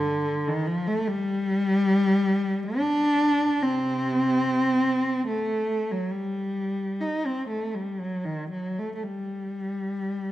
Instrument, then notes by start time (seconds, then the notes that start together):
cello
Already playing: D3
0.48 D#3
0.67 F3
0.88 A3
1.08 G3
2.78 D4
3.62 C3 C4
5.28 A3
5.92 F#3
6.12 G3
7.01 D#4
7.26 C4
7.49 A3
7.75 G3
8.00 F#3
8.25 D#3
8.51 F#3
8.79 A3
8.95 A3
9.03 G3